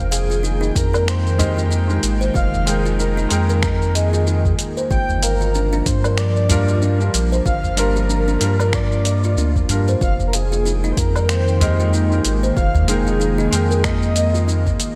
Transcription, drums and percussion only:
0.12 closed hi-hat medium
0.12 shaker medium
0.31 shaker soft
0.44 shaker soft
0.63 shaker soft
0.76 kick loud
0.76 closed hi-hat medium
0.76 shaker medium
0.94 low woodblock medium
0.94 shaker soft
1.08 finger snap medium
1.08 shaker soft
1.26 shaker soft
1.40 closed hi-hat medium
1.40 udu medium
1.40 shaker medium
1.58 shaker soft
1.71 shaker soft
1.90 shaker soft
2.03 closed hi-hat medium
2.03 shaker medium
2.22 shaker soft
2.35 kick loud
2.35 shaker soft
2.54 udu loud
2.54 shaker soft
2.67 closed hi-hat medium
2.67 shaker medium
2.86 shaker soft
3.00 shaker soft
3.18 shaker soft
3.30 closed hi-hat medium
3.30 shaker medium
3.49 shaker soft
3.63 finger snap medium
3.63 kick loud
3.63 shaker soft
3.82 shaker soft
3.95 closed hi-hat medium
3.95 shaker medium
4.14 shaker soft
4.27 shaker soft
4.45 kick medium
4.45 udu medium
4.45 shaker soft
4.59 closed hi-hat medium
4.59 shaker medium
4.77 shaker soft
4.91 kick loud
4.91 shaker soft
5.09 udu loud
5.09 shaker soft
5.23 closed hi-hat loud
5.23 shaker medium
5.41 shaker soft
5.55 shaker soft
5.73 shaker soft
5.86 kick loud
5.86 closed hi-hat medium
5.86 shaker medium
6.04 low woodblock medium
6.04 shaker soft
6.18 finger snap medium
6.18 shaker soft
6.36 shaker soft
6.50 closed hi-hat medium
6.50 udu medium
6.50 shaker medium
6.68 shaker soft
6.82 shaker soft
7.00 shaker soft
7.14 closed hi-hat medium
7.14 shaker medium
7.33 shaker soft
7.46 kick loud
7.46 shaker soft
7.63 udu loud
7.63 shaker soft
7.77 closed hi-hat loud
7.77 shaker medium
7.96 shaker soft
8.09 shaker soft
8.28 shaker soft
8.41 closed hi-hat loud
8.41 shaker medium
8.60 low woodblock medium
8.60 shaker soft
8.73 finger snap medium
8.73 kick loud
8.73 shaker soft
8.92 shaker soft
9.05 closed hi-hat medium
9.05 shaker medium
9.23 shaker soft
9.37 shaker soft
9.56 kick medium
9.56 udu medium
9.56 shaker soft
9.69 closed hi-hat medium
9.69 udu medium
9.69 shaker medium
9.88 shaker soft
10.01 kick loud
10.01 shaker soft
10.19 udu medium
10.19 shaker soft
10.33 closed hi-hat loud
10.33 shaker medium
10.52 shaker soft
10.66 shaker soft
10.84 shaker soft
10.97 kick loud
10.97 closed hi-hat medium
10.97 shaker medium
11.16 low woodblock medium
11.16 shaker soft
11.29 finger snap medium
11.29 shaker soft
11.48 shaker soft
11.61 closed hi-hat medium
11.61 udu medium
11.61 shaker medium
11.80 shaker soft
11.93 shaker soft
12.12 shaker soft
12.25 closed hi-hat medium
12.25 shaker medium
12.43 shaker soft
12.57 kick loud
12.57 shaker soft
12.75 udu loud
12.75 shaker soft
12.88 closed hi-hat medium
12.88 shaker medium
13.07 shaker soft
13.21 shaker soft
13.39 shaker soft
13.53 closed hi-hat medium
13.53 shaker medium
13.71 shaker soft
13.84 finger snap medium
13.84 kick loud
13.84 shaker soft
14.02 shaker soft
14.16 closed hi-hat medium
14.16 shaker medium
14.35 shaker soft
14.48 shaker soft
14.66 kick medium
14.66 udu loud
14.66 shaker soft
14.80 closed hi-hat medium
14.80 shaker medium

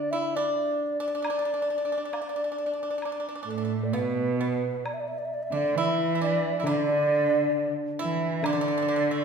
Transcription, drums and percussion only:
1.25 high woodblock medium
2.13 high woodblock soft
2.13 low woodblock soft
3.02 high woodblock soft
3.94 low woodblock soft
4.86 high woodblock medium
6.66 high woodblock soft
8.44 high woodblock medium

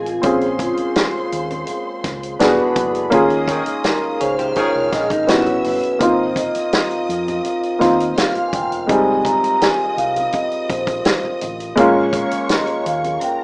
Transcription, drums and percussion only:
0.06 closed hi-hat soft
0.23 kick loud
0.23 closed hi-hat medium
0.41 closed hi-hat soft
0.59 kick medium
0.59 closed hi-hat medium
0.59 muted conga soft
0.59 high conga medium
0.77 closed hi-hat medium
0.96 snare loud
0.96 closed hi-hat medium
0.96 muted conga soft
1.32 closed hi-hat medium
1.32 muted conga soft
1.51 closed hi-hat soft
1.51 low conga medium
1.67 closed hi-hat medium
1.67 low conga medium
2.04 kick medium
2.04 snare soft
2.04 closed hi-hat medium
2.04 muted conga soft
2.23 closed hi-hat medium
2.39 snare loud
2.39 closed hi-hat medium
2.39 muted conga soft
2.39 high conga medium
2.58 low conga medium
2.76 kick medium
2.76 closed hi-hat medium
2.76 muted conga soft
2.76 high conga medium
2.95 closed hi-hat soft
3.12 kick loud
3.12 closed hi-hat medium
3.30 closed hi-hat soft
3.48 kick medium
3.48 closed hi-hat medium
3.48 muted conga soft
3.48 high conga medium
3.66 closed hi-hat medium
3.84 snare medium
3.84 closed hi-hat medium
3.84 muted conga soft
4.20 closed hi-hat medium
4.20 muted conga soft
4.39 closed hi-hat soft
4.39 low conga medium
4.56 kick medium
4.56 closed hi-hat medium
4.56 muted conga soft
4.56 low conga medium
4.93 kick medium
4.93 snare soft
4.93 closed hi-hat medium
5.10 kick medium
5.10 closed hi-hat medium
5.27 snare loud
5.27 closed hi-hat medium
5.27 muted conga soft
5.27 high conga medium
5.46 closed hi-hat soft
5.46 low conga medium
5.64 open hi-hat medium
5.64 muted conga soft
5.64 high conga medium
5.83 closed hi-hat soft
6.00 kick loud
6.00 closed hi-hat medium
6.36 kick medium
6.36 closed hi-hat medium
6.36 high conga medium
6.55 closed hi-hat medium
6.73 snare loud
6.73 closed hi-hat medium
6.73 muted conga soft
6.91 closed hi-hat soft
7.10 closed hi-hat medium
7.28 closed hi-hat soft
7.28 low conga medium
7.45 closed hi-hat medium
7.45 low conga medium
7.63 closed hi-hat soft
7.81 kick loud
7.81 snare soft
7.81 closed hi-hat medium
7.81 muted conga soft
8.00 closed hi-hat medium
8.16 snare loud
8.16 closed hi-hat medium
8.16 muted conga soft
8.16 high conga medium
8.35 closed hi-hat soft
8.35 low conga medium
8.53 kick medium
8.53 closed hi-hat medium
8.53 muted conga soft
8.53 high conga medium
8.72 closed hi-hat soft
8.89 kick loud
8.89 closed hi-hat medium
9.25 kick medium
9.25 closed hi-hat medium
9.25 muted conga soft
9.25 high conga medium
9.44 closed hi-hat medium
9.62 snare medium
9.62 closed hi-hat medium
9.62 muted conga soft
9.98 closed hi-hat medium
9.98 muted conga soft
10.16 closed hi-hat soft
10.16 low conga medium
10.32 kick medium
10.32 closed hi-hat medium
10.32 muted conga soft
10.32 low conga medium
10.52 closed hi-hat soft
10.70 kick medium
10.70 closed hi-hat medium
10.70 muted conga soft
10.87 kick medium
10.87 closed hi-hat medium
11.05 snare loud
11.05 closed hi-hat medium
11.05 high conga medium
11.23 low conga medium
11.41 closed hi-hat medium
11.41 muted conga soft
11.41 high conga medium
11.60 closed hi-hat soft
11.77 kick loud
11.77 closed hi-hat medium
12.13 kick medium
12.13 closed hi-hat medium
12.13 high conga medium
12.31 closed hi-hat medium
12.49 snare medium
12.49 closed hi-hat medium
12.49 muted conga soft
12.67 closed hi-hat soft
12.86 closed hi-hat medium
13.04 closed hi-hat soft
13.04 low conga medium
13.21 closed hi-hat medium
13.21 muted conga soft
13.21 low conga medium

